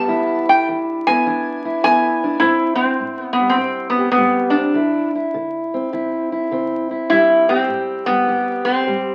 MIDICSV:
0, 0, Header, 1, 3, 480
1, 0, Start_track
1, 0, Key_signature, 0, "minor"
1, 0, Tempo, 584226
1, 72, Time_signature, 4, 2, 24, 8
1, 7517, End_track
2, 0, Start_track
2, 0, Title_t, "Resonator guitar played with a steel bar"
2, 0, Program_c, 0, 25
2, 0, Note_on_c, 0, 81, 93
2, 377, Note_off_c, 0, 81, 0
2, 404, Note_on_c, 0, 79, 93
2, 552, Note_off_c, 0, 79, 0
2, 878, Note_on_c, 0, 80, 107
2, 1491, Note_off_c, 0, 80, 0
2, 1512, Note_on_c, 0, 80, 123
2, 1968, Note_on_c, 0, 64, 92
2, 1972, Note_off_c, 0, 80, 0
2, 2260, Note_off_c, 0, 64, 0
2, 2263, Note_on_c, 0, 60, 87
2, 2633, Note_off_c, 0, 60, 0
2, 2633, Note_on_c, 0, 59, 87
2, 2731, Note_off_c, 0, 59, 0
2, 2735, Note_on_c, 0, 59, 81
2, 2871, Note_on_c, 0, 60, 83
2, 2923, Note_off_c, 0, 59, 0
2, 3198, Note_off_c, 0, 60, 0
2, 3202, Note_on_c, 0, 59, 70
2, 3371, Note_off_c, 0, 59, 0
2, 3381, Note_on_c, 0, 59, 87
2, 3699, Note_on_c, 0, 62, 69
2, 3734, Note_off_c, 0, 59, 0
2, 4169, Note_off_c, 0, 62, 0
2, 5831, Note_on_c, 0, 64, 97
2, 6154, Note_on_c, 0, 60, 86
2, 6162, Note_off_c, 0, 64, 0
2, 6620, Note_off_c, 0, 60, 0
2, 6623, Note_on_c, 0, 59, 97
2, 7105, Note_on_c, 0, 60, 83
2, 7125, Note_off_c, 0, 59, 0
2, 7517, Note_off_c, 0, 60, 0
2, 7517, End_track
3, 0, Start_track
3, 0, Title_t, "Steel-string acoustic guitar"
3, 0, Program_c, 1, 25
3, 0, Note_on_c, 1, 55, 62
3, 0, Note_on_c, 1, 59, 70
3, 67, Note_on_c, 1, 40, 78
3, 71, Note_on_c, 1, 64, 68
3, 390, Note_off_c, 1, 59, 0
3, 403, Note_on_c, 1, 62, 56
3, 515, Note_off_c, 1, 40, 0
3, 565, Note_on_c, 1, 40, 75
3, 870, Note_off_c, 1, 55, 0
3, 884, Note_on_c, 1, 59, 64
3, 1003, Note_off_c, 1, 40, 0
3, 1030, Note_off_c, 1, 62, 0
3, 1039, Note_on_c, 1, 40, 77
3, 1041, Note_on_c, 1, 62, 62
3, 1347, Note_off_c, 1, 64, 0
3, 1357, Note_on_c, 1, 64, 65
3, 1479, Note_off_c, 1, 40, 0
3, 1499, Note_off_c, 1, 59, 0
3, 1506, Note_on_c, 1, 40, 76
3, 1511, Note_on_c, 1, 59, 62
3, 1829, Note_off_c, 1, 62, 0
3, 1839, Note_on_c, 1, 62, 64
3, 1953, Note_off_c, 1, 40, 0
3, 1966, Note_off_c, 1, 59, 0
3, 1971, Note_off_c, 1, 62, 0
3, 1980, Note_on_c, 1, 45, 75
3, 1983, Note_on_c, 1, 60, 59
3, 2324, Note_off_c, 1, 60, 0
3, 2328, Note_on_c, 1, 60, 50
3, 2429, Note_off_c, 1, 45, 0
3, 2462, Note_on_c, 1, 45, 65
3, 2790, Note_on_c, 1, 55, 52
3, 2910, Note_off_c, 1, 45, 0
3, 2932, Note_off_c, 1, 60, 0
3, 2933, Note_on_c, 1, 45, 64
3, 2936, Note_on_c, 1, 60, 52
3, 3272, Note_off_c, 1, 64, 0
3, 3275, Note_on_c, 1, 67, 58
3, 3386, Note_off_c, 1, 45, 0
3, 3418, Note_off_c, 1, 55, 0
3, 3422, Note_on_c, 1, 45, 69
3, 3428, Note_on_c, 1, 55, 59
3, 3751, Note_off_c, 1, 60, 0
3, 3754, Note_on_c, 1, 60, 54
3, 3870, Note_off_c, 1, 45, 0
3, 3889, Note_off_c, 1, 67, 0
3, 3895, Note_on_c, 1, 50, 69
3, 3904, Note_on_c, 1, 64, 58
3, 3905, Note_off_c, 1, 55, 0
3, 3919, Note_off_c, 1, 60, 0
3, 4230, Note_off_c, 1, 64, 0
3, 4233, Note_on_c, 1, 64, 60
3, 4347, Note_off_c, 1, 50, 0
3, 4389, Note_on_c, 1, 50, 66
3, 4716, Note_on_c, 1, 60, 57
3, 4835, Note_off_c, 1, 50, 0
3, 4869, Note_off_c, 1, 64, 0
3, 4869, Note_on_c, 1, 50, 68
3, 4872, Note_on_c, 1, 64, 58
3, 5190, Note_off_c, 1, 64, 0
3, 5194, Note_on_c, 1, 64, 61
3, 5316, Note_off_c, 1, 50, 0
3, 5352, Note_on_c, 1, 50, 65
3, 5354, Note_off_c, 1, 60, 0
3, 5358, Note_on_c, 1, 60, 56
3, 5672, Note_off_c, 1, 64, 0
3, 5675, Note_on_c, 1, 64, 66
3, 5799, Note_off_c, 1, 50, 0
3, 5833, Note_on_c, 1, 45, 76
3, 5844, Note_on_c, 1, 55, 64
3, 6155, Note_off_c, 1, 64, 0
3, 6158, Note_on_c, 1, 67, 60
3, 6280, Note_off_c, 1, 45, 0
3, 6313, Note_on_c, 1, 45, 69
3, 6634, Note_off_c, 1, 55, 0
3, 6637, Note_on_c, 1, 55, 60
3, 6762, Note_off_c, 1, 45, 0
3, 6794, Note_on_c, 1, 45, 65
3, 6805, Note_off_c, 1, 67, 0
3, 6808, Note_on_c, 1, 67, 65
3, 7120, Note_off_c, 1, 67, 0
3, 7130, Note_on_c, 1, 67, 65
3, 7244, Note_off_c, 1, 45, 0
3, 7276, Note_off_c, 1, 55, 0
3, 7288, Note_on_c, 1, 45, 78
3, 7289, Note_on_c, 1, 55, 59
3, 7517, Note_off_c, 1, 45, 0
3, 7517, Note_off_c, 1, 55, 0
3, 7517, Note_off_c, 1, 60, 0
3, 7517, Note_off_c, 1, 67, 0
3, 7517, End_track
0, 0, End_of_file